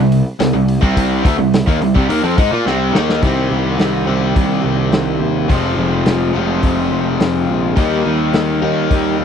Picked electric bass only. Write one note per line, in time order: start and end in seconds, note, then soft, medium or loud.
0.00 0.24 C2 medium
0.41 0.53 C2 medium
0.54 0.80 C2 medium
0.83 1.22 C2 loud
1.25 1.38 D2 loud
1.39 1.65 C2 medium
1.67 1.80 D#2 medium
1.82 1.95 C2 medium
1.96 2.09 C2 medium
2.09 2.22 D#2 medium
2.24 2.37 F2 loud
2.38 2.51 G#2 medium
2.52 2.65 A#2 loud
2.66 2.92 C2 medium
2.93 3.20 D#2 medium
3.23 3.48 C2 medium
3.51 3.76 C2 medium
3.80 4.05 C2 medium
4.08 4.33 C2 medium
4.36 4.61 C2 medium
4.65 4.90 C2 medium
4.92 5.18 C2 medium
5.21 5.46 D#2 medium
5.50 5.75 F1 medium
5.77 6.03 F1 medium
6.06 6.32 F1 medium
6.36 6.61 F1 medium
6.63 6.89 F1 medium
6.92 7.17 F1 medium
7.21 7.46 F1 medium
7.49 7.74 A#1 medium
7.77 8.02 D#2 medium
8.06 8.31 D#2 medium
8.35 8.60 D#2 medium
8.63 8.88 D#2 medium
8.91 9.16 D#2 medium
9.20 9.25 D#2 medium